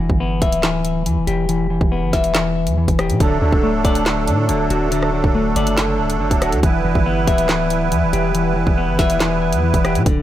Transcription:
0.00 clean electric guitar E3
0.10 808-style bass G1, kick
0.20 clean electric guitar B3
0.42 808-style bass D1, clean electric guitar E5, kick, closed hi-hat
0.52 closed hi-hat
0.63 clean electric guitar E3, snare, clap
0.85 closed hi-hat
1.06 808-style bass E2, clean electric guitar E3, closed hi-hat
1.17 808-style bass D1
1.27 808-style bass E1, clean electric guitar G4, closed hi-hat
1.49 clean electric guitar E3, closed hi-hat
1.70 clean electric guitar E3
1.81 808-style bass E1, kick
1.92 clean electric guitar B3
2.02 808-style bass G1
2.13 808-style bass E1, clean electric guitar E5, kick, snare, closed hi-hat
2.24 closed hi-hat
2.35 clean electric guitar E3, snare, clap, closed hi-hat
2.67 808-style bass E2, closed hi-hat
2.77 clean electric guitar E3
2.88 808-style bass E1, kick, closed hi-hat
2.99 clean electric guitar G4, cross-stick, closed hi-hat
3.10 808-style bass B2, closed hi-hat
3.20 808-style bass D1, clean electric guitar D3, accordion F#3 A3 D4 A4, kick, closed hi-hat
3.42 808-style bass D2, clean electric guitar D3
3.52 808-style bass D1, kick
3.63 clean electric guitar A3
3.74 808-style bass C1
3.85 808-style bass D1, clean electric guitar D5, kick, closed hi-hat
3.95 closed hi-hat
4.06 clean electric guitar D3, snare, clap
4.27 808-style bass A2, closed hi-hat
4.49 808-style bass D1, clean electric guitar D3, closed hi-hat
4.70 808-style bass D1, clean electric guitar F#4, closed hi-hat
4.91 clean electric guitar D3, closed hi-hat
5.03 cross-stick
5.13 clean electric guitar D3
5.24 808-style bass D1, kick
5.35 clean electric guitar A3
5.56 808-style bass F#1, clean electric guitar D5, closed hi-hat
5.67 closed hi-hat
5.77 clean electric guitar D3, snare, clap, closed hi-hat
5.99 808-style bass C1
6.10 closed hi-hat
6.15 808-style bass F#1
6.20 clean electric guitar D3
6.31 808-style bass D1, kick, closed hi-hat
6.42 clean electric guitar F#4, cross-stick, closed hi-hat
6.52 808-style bass D2, closed hi-hat
6.63 808-style bass E1, clean electric guitar E3, accordion G3 B3 E4 B4, kick, closed hi-hat
6.84 808-style bass E1, clean electric guitar E3
6.95 808-style bass G1, kick
7.06 clean electric guitar B3
7.27 808-style bass D1, clean electric guitar E5, kick, closed hi-hat
7.38 closed hi-hat
7.49 clean electric guitar E3, snare, clap
7.70 closed hi-hat
7.92 808-style bass E2, clean electric guitar E3, closed hi-hat
8.02 808-style bass D1
8.13 808-style bass E1, clean electric guitar G4, closed hi-hat
8.35 clean electric guitar E3, closed hi-hat
8.56 clean electric guitar E3
8.67 808-style bass E1, kick
8.78 clean electric guitar B3
8.88 808-style bass G1
8.99 808-style bass E1, clean electric guitar E5, kick, snare, closed hi-hat
9.10 closed hi-hat
9.20 clean electric guitar E3, snare, clap, closed hi-hat
9.53 808-style bass E2, closed hi-hat
9.63 clean electric guitar E3
9.74 808-style bass E1, kick, closed hi-hat
9.85 clean electric guitar G4, cross-stick, closed hi-hat
9.95 808-style bass B2, closed hi-hat
10.06 808-style bass D1, clean electric guitar D3, kick, closed hi-hat

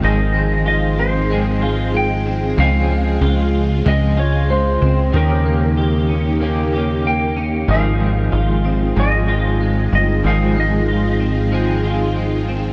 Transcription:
Already playing: string machine D#3 G#3 G#4, clean electric guitar G#3 C4 F4
0.01 analog synth bass G#1, clean electric guitar G#2 D#3 F3 G#3 C4, string machine D#4, electric slide guitar D#5
0.05 clean electric guitar G#4
0.34 clean electric guitar G#3
0.66 clean electric guitar F4, electric slide guitar D#5
0.99 clean electric guitar C4, electric slide guitar C5
1.29 clean electric guitar F3 G#3 C4 G#4
1.61 clean electric guitar F3 G#3 C4 F4 G#4
1.94 clean electric guitar G#3, electric slide guitar G5
2.26 clean electric guitar C4
2.56 analog synth bass C#2, clean electric guitar C#3 F3 G#3 C4, string machine C#3 F4, electric slide guitar F5
2.61 clean electric guitar G#4
2.89 clean electric guitar G#3
3.21 analog synth bass C#2, clean electric guitar F4
3.84 analog synth bass C#2, clean electric guitar F3 G#3 C4 G#4, electric slide guitar D#5
4.17 clean electric guitar G#3 F4 G#4, electric slide guitar C#5
4.49 clean electric guitar G#3, electric slide guitar C5
4.82 analog synth bass C#2, clean electric guitar C4
5.12 analog synth bass D#2, clean electric guitar D#3 A#3 C#4, string machine A#3 D#4 G4, electric slide guitar A#4
5.17 clean electric guitar G4
5.45 clean electric guitar A#3
5.77 clean electric guitar G4
6.09 clean electric guitar C#4
6.40 clean electric guitar D#3 A#3 C#4 G4
6.72 clean electric guitar A#3 C#4 G4
7.05 clean electric guitar A#3, electric slide guitar G5
7.37 clean electric guitar C#4
7.67 analog synth bass G#1, clean electric guitar G#2 D#3 F3 G#3 C4, string machine D#3 D#4 F4 G#4, electric slide guitar F5
7.72 clean electric guitar G#4
8.00 clean electric guitar G#3
8.32 analog synth bass G#1, clean electric guitar F4
8.65 clean electric guitar C4
8.96 analog synth bass G#1, clean electric guitar F3 G#3 C4 G#4, electric slide guitar D#5
9.28 clean electric guitar F3 G#3 C4 F4 G#4
9.61 clean electric guitar G#3
9.92 analog synth bass G1, clean electric guitar C4, electric slide guitar D#5
10.23 analog synth bass G#1, clean electric guitar G#2 D#3 F3 G#3, electric slide guitar F5
10.27 clean electric guitar C4 G#4
10.56 clean electric guitar G#3, electric slide guitar D#5
10.88 clean electric guitar F4
11.20 clean electric guitar C4
11.52 clean electric guitar F3 G#3 C4 G#4
11.83 clean electric guitar F3 G#3 C4 F4 G#4
12.16 clean electric guitar G#3
12.48 clean electric guitar C4

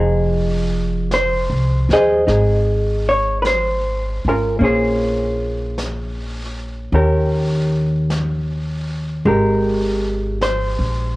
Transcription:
Already playing: upright bass F1, hollow-body jazz guitar F3 D#4 G#4
1.11 hollow-body jazz guitar C5, brush sweep, snare, hi-hat pedal
1.50 upright bass C2
1.89 upright bass D#2, hollow-body jazz guitar C5, snare
1.93 hollow-body jazz guitar G#4 D#5
2.27 upright bass G#1, hollow-body jazz guitar D#4 G#4, brush sweep, snare
3.09 hollow-body jazz guitar C#5
3.42 hollow-body jazz guitar B4, brush sweep, snare, hi-hat pedal
3.47 hollow-body jazz guitar C5
4.25 upright bass G#1, hollow-body jazz guitar C#4 F4
4.29 hollow-body jazz guitar A#4
4.59 upright bass A#1, hollow-body jazz guitar A#3 C#4, brush sweep
4.64 hollow-body jazz guitar G#4 C5
5.78 brush sweep, snare, hi-hat pedal
6.92 upright bass D#2, hollow-body jazz guitar D#3 C#4 G4 A#4, brush sweep
8.10 brush sweep, snare, hi-hat pedal
9.25 upright bass G#1, hollow-body jazz guitar G#3 G4 A#4, brush sweep
10.41 hollow-body jazz guitar C5, brush sweep, snare, hi-hat pedal
10.79 upright bass A#1

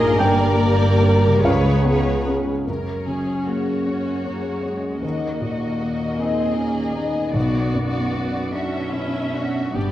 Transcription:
Already playing: double bass section A#1, harp A#2 D#4 A#5, cello section A#2, felt piano A#2 A#3 D#4 F4 G#5, viola section A#3 F4, violin section G#4 A#4 D#5
0.00 harp G2
0.05 harp A#3
0.09 harp D4
0.18 double bass section G1, cello section G2, felt piano G2 G5, viola section G4, violin section A#4 D5
0.61 felt piano A#3
1.03 felt piano D4 A#4
1.25 harp C#3
1.30 harp B3
1.34 harp C#4
1.39 harp G#4
1.43 double bass section C#2, felt piano C#2 F5, cello section C#3, viola section G#3 G#4, violin section B4 C#5
1.84 felt piano B3
2.27 felt piano C#4 G#4
2.66 double bass section F#1, harp F#2, cello section F#2, felt piano F#2, viola section C#4, violin section A#4 C#5
3.06 felt piano C#3, harp A#3, violin section G#4
3.46 felt piano A#3, violin section F#4, harp G#4
3.86 felt piano C#4, viola section C#4, harp A#4
4.25 viola section A#3, felt piano C#4, harp G#4
4.63 viola section G#3, harp A#3, felt piano C#4
5.02 cello section D#2, felt piano D#2, double bass section D#2, harp D#3, viola section A#3, violin section F#4 D#5
5.41 felt piano A#2, harp D#4
5.80 felt piano A#3, harp A#4
6.17 viola section C4, felt piano D#4, violin section G#4, harp D#5
6.56 viola section A#3, felt piano C#4, harp A#4
6.95 viola section B3, harp D#4, felt piano D#4
7.33 felt piano B1, double bass section B1, harp B2, cello section B2, violin section F#4 D5
7.73 felt piano F#2, harp B3
8.13 felt piano B3, harp F#4
8.52 viola section C#4, felt piano D4, violin section F#4 E5, harp B4
8.92 felt piano C#4, violin section E4, harp F#4
9.33 harp B3, felt piano D4, violin section F#4
9.74 double bass section G1, felt piano G2, harp G2, cello section G2, viola section B3, violin section G4 D5

